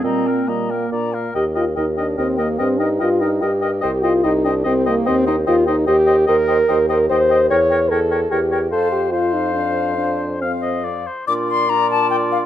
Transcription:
X:1
M:3/4
L:1/8
Q:1/4=145
K:Eb
V:1 name="Flute"
b g b g b f | g g g g g g | g g g g g g | g g g g g g |
g g g g g g | [K:Bb] g g g g g g | g g g g g g | f2 f4- |
f2 f3 z | d' c' b a g f |]
V:2 name="Oboe"
e B e B d B | e e e e e e | e e e e e e | e e e e e e |
e e e e e e | [K:Bb] e e e e e e | ^c c c c c c | c2 c4- |
c2 f e d c | d6 |]
V:3 name="Clarinet"
C2 B,3 z | B B B B B B | B B B B B B | c c c c c c |
c c c c c c | [K:Bb] c c c c c c | B B B B B B | c2 c4- |
c2 c3 z | F2 F4 |]
V:4 name="French horn"
G, B, G, B, D B, | G F E D C B, | C E F E G2 | G F E D C B, |
C E F E G2 | [K:Bb] B3 B c2 | ^c2 A2 G2 | A G F E D2 |
D2 C2 z2 | D2 D4 |]
V:5 name="Bassoon" clef=bass
B,,2 B,,2 B,,2 | E,,2 E,,2 E,,2 | G,,2 G,,2 G,,2 | C,,2 C,,2 C,,2 |
E,,2 E,,2 E,,2 | [K:Bb] E,,2 E,,2 E,,2 | =E,,2 E,,2 E,,2 | F,,6- |
F,,4- F,, z | B,,6 |]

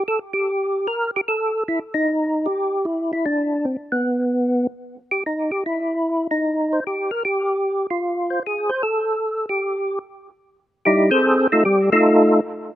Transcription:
X:1
M:4/4
L:1/8
Q:"Swing" 1/4=150
K:F
V:1 name="Tonewheel organ"
A G3 B G A2 | E _E3 G2 =E E | D2 C =B,4 z | z G _E G =E3 _E- |
_E c G B G3 F- | F c _A c =A3 G- | G2 z4 [G,_E=EG] [C_A=Ac]- | [C_A=Ac] [A,_EFA] [G,G] [A,EFA]3 z2 |]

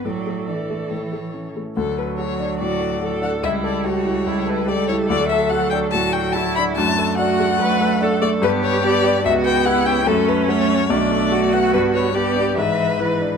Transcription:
X:1
M:4/4
L:1/8
Q:1/4=144
K:D
V:1 name="Violin"
d2 d2 c3 z | A B c2 d3 f | e d c3 B d c | d e f g a g a b |
a2 f4- f d | B c d2 e g f g | A B c2 d3 f | B c d2 e2 B2 |]
V:2 name="Viola"
A6- A z | z4 F2 A2 | E2 F2 E2 A2- | A4 F2 E2 |
D2 F2 B2 A2 | G4 F2 E2 | C4 D2 F2- | F2 G2 B4 |]
V:3 name="Grand piano"
A,, A, D A, A,, A, C A, | D,, A F D A,, A F D | C,, A G E C,, A G E | D,, A F D A,, A F D |
F,, A D A, F,, A D A, | G,, B G D C,, B G C | F,, A F C B,,, A F B, | G,, B G D ^G,, B E D |]
V:4 name="Cello"
F,2 E,4- E, z | F,8 | G,8 | F,8 |
A,8 | B,2 B,2 B,4 | A,2 A,2 A,4 | B,2 B,2 E,2 E,2 |]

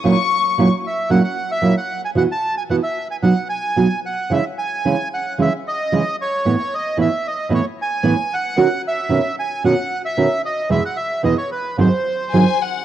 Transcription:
X:1
M:4/4
L:1/16
Q:1/4=112
K:Bmix
V:1 name="Violin section"
c'4- c' z8 z3 | z16 | z16 | z16 |
z16 | z12 g2 f2 |]
V:2 name="Bandoneon"
z6 e2 f f2 e2 f2 g | f a2 g f e2 g f2 g4 f2 | e2 g4 f2 e2 d4 c2- | c2 d2 e2 d2 c2 g4 f2- |
f2 e4 g2 f3 e3 d2 | e f e2 d c B2 ^B6 z2 |]
V:3 name="Nylon-string guitar"
[^A,,F,^A,CE]2 z2 [A,,F,A,CE]2 z2 [A,,F,A,CE]2 z2 [A,,F,A,CE]2 z2 | [B,,E,B,EF]2 z2 [B,,E,B,EF]2 z2 [B,,F,B,DF]2 z2 [B,,F,B,DF]2 z2 | [C,E,G,CE]2 z2 [C,E,G,CE]2 z2 [C,E,G,CE]2 z2 [C,E,G,CE]2 z2 | [A,,E,A,B,E]2 z2 [A,,E,A,B,E]2 z2 [A,,E,A,B,E]2 z2 [A,,E,A,B,E]2 z2 |
[B,,D,CF]2 z2 [B,,D,CF]2 z2 [B,,D,CF]2 z2 [B,,D,CF]2 z2 | [E,,B,,E,G,B,E]2 z2 [E,,B,,E,G,B,E]2 z2 [G,,D,F,^B,DG]2 z2 [G,,D,F,B,DG]2 z2 |]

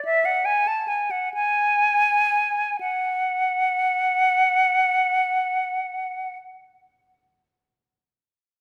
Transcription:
X:1
M:6/8
L:1/16
Q:3/8=41
K:F#m
V:1 name="Flute"
e f g a g f g6 | f12- | f12 |]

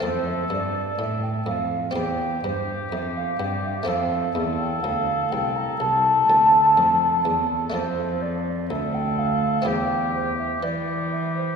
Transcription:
X:1
M:4/4
L:1/16
Q:1/4=62
K:F
V:1 name="Flute"
c e d2 e g f2 g2 c2 e f g e | f2 e g f2 g b a6- a z | c2 d2 e g f2 g2 c e d2 e c |]
V:2 name="Oboe"
A6 z2 G8 | A16- | A2 z2 A4 G4 G4 |]
V:3 name="Harpsichord"
[A,CA]8 [CG]8 | [A,CF]16 | [A,DF]8 [CEG]8 |]
V:4 name="Harpsichord" clef=bass
F,,2 G,,2 A,,2 F,,2 E,,2 G,,2 F,,2 G,,2 | F,,2 E,,2 D,,2 C,,2 C,,2 D,,2 F,,2 E,,2 | F,,4 D,,4 E,,4 E,4 |]
V:5 name="Cello" clef=bass
F,,2 G,,2 A,,2 F,,2 E,,2 G,,2 F,,2 G,,2 | F,,2 E,,2 D,,2 C,,2 C,,2 D,,2 F,,2 E,,2 | F,,4 D,,4 E,,4 E,4 |]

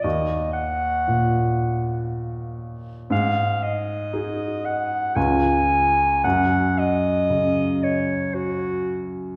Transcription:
X:1
M:3/4
L:1/16
Q:1/4=58
K:F#
V:1 name="Clarinet"
d2 f6 z4 | e2 d4 f2 g4 | f2 d4 c2 F3 z |]
V:2 name="Grand piano" clef=bass
D,,4 A,,8 | G,,4 [DG]4 [C,,CE]4 | F,,4 C,8 |]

